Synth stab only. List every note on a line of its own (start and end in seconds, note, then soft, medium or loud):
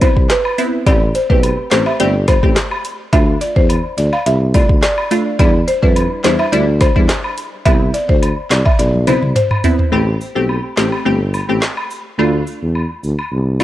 0.01 0.16 B3 medium
0.01 0.16 C4 medium
0.01 0.16 E4 medium
0.58 0.84 B3 medium
0.58 0.85 C4 medium
0.58 0.85 E4 medium
0.86 1.01 A3 loud
0.86 1.01 C4 medium
0.86 1.01 G4 loud
1.30 1.68 A3 medium
1.30 1.68 C4 medium
1.30 1.68 G4 medium
1.71 1.98 A3 medium
1.71 1.98 C4 medium
1.71 1.98 G4 medium
2.00 2.14 A3 loud
2.00 2.14 C4 medium
2.00 2.15 G4 loud
2.43 2.56 A3 medium
2.43 2.56 C4 medium
2.43 2.56 G4 medium
3.13 3.65 A3 medium
3.13 3.65 D4 medium
3.13 3.66 F4 loud
4.54 4.69 A3 medium
4.54 4.69 D4 medium
4.54 4.69 F4 medium
5.11 5.37 A3 medium
5.11 5.37 D4 medium
5.11 5.38 F4 medium
5.39 5.54 G3 medium
5.39 5.54 D4 medium
5.39 5.54 E4 loud
5.83 6.21 G3 medium
5.83 6.21 D4 medium
5.83 6.21 E4 medium
6.24 6.50 G3 medium
6.24 6.51 D4 medium
6.24 6.51 E4 medium
6.52 6.67 G3 loud
6.52 6.67 D4 medium
6.52 6.67 E4 loud
6.96 7.09 G3 medium
6.96 7.09 D4 medium
6.96 7.09 E4 medium
7.66 8.18 B3 loud
7.66 8.18 C4 medium
7.66 8.18 E4 loud
9.07 9.22 B3 medium
9.07 9.22 C4 medium
9.07 9.22 E4 medium
9.64 9.90 B3 medium
9.64 9.90 C4 medium
9.64 9.90 E4 medium
9.92 10.07 A3 medium
9.92 10.07 C4 medium
9.92 10.07 G4 loud
10.35 10.74 A3 medium
10.35 10.74 C4 medium
10.35 10.74 G4 medium
10.77 11.03 A3 medium
10.77 11.03 C4 medium
10.77 11.04 G4 medium
11.05 11.20 A3 medium
11.05 11.20 C4 medium
11.05 11.20 G4 loud
11.49 11.62 A3 medium
11.49 11.62 C4 medium
11.49 11.62 G4 medium
12.18 12.71 A3 medium
12.18 12.71 D4 medium
12.18 12.71 F4 loud
13.60 13.64 A3 medium
13.60 13.64 D4 medium
13.60 13.64 F4 medium